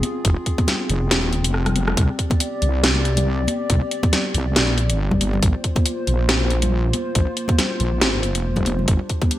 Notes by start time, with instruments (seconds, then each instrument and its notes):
Already playing: analog synth pad C4 F4 G#4
0.03 closed hi-hat, high conga
0.25 wobble bass F1, kick, closed hi-hat
0.46 kick, closed hi-hat
0.58 kick, closed hi-hat, high conga
0.67 snare, closed hi-hat, low conga
0.89 wobble bass F1, closed hi-hat
1.11 wobble bass D#1, snare, closed hi-hat
1.23 high conga
1.33 closed hi-hat
1.44 wobble bass F1, closed hi-hat
1.54 cross-stick
1.66 cross-stick, closed hi-hat, low conga
1.76 closed hi-hat, high conga
1.88 cross-stick, low conga
1.97 wobble bass C2, analog synth pad G4 D5, kick, closed hi-hat
2.19 kick, closed hi-hat
2.30 kick, closed hi-hat, high conga
2.40 closed hi-hat
2.62 wobble bass C2, closed hi-hat
2.84 snare, closed hi-hat
2.96 high conga
3.05 closed hi-hat
3.17 closed hi-hat, low conga
3.48 closed hi-hat, high conga
3.70 wobble bass C2, kick, closed hi-hat
3.91 closed hi-hat
4.03 kick, closed hi-hat, high conga
4.13 snare, closed hi-hat, low conga
4.34 wobble bass C2, closed hi-hat
4.56 wobble bass A#1, snare, closed hi-hat
4.68 high conga
4.78 closed hi-hat
4.90 wobble bass G1, closed hi-hat
5.11 kick, low conga
5.21 closed hi-hat, high conga
5.34 low conga
5.43 wobble bass A#1, analog synth pad A#3 F4 C5, kick, closed hi-hat
5.64 kick, closed hi-hat
5.76 kick, closed hi-hat, high conga
5.86 closed hi-hat
6.07 wobble bass A#1, closed hi-hat
6.29 snare, closed hi-hat
6.41 high conga
6.50 closed hi-hat
6.62 closed hi-hat, low conga
6.93 closed hi-hat, high conga
7.15 wobble bass A#1, kick, closed hi-hat
7.37 closed hi-hat
7.48 kick, closed hi-hat, high conga
7.58 snare, closed hi-hat, low conga
7.80 wobble bass A#1, closed hi-hat
8.01 wobble bass G#1, snare, closed hi-hat
8.14 high conga
8.23 wobble bass F1, closed hi-hat
8.35 closed hi-hat
8.56 kick, closed hi-hat, low conga
8.66 closed hi-hat, high conga
8.79 low conga
8.88 wobble bass G1, analog synth pad G3 D4 G4, kick, closed hi-hat
9.09 kick, closed hi-hat
9.22 kick, closed hi-hat, high conga
9.31 closed hi-hat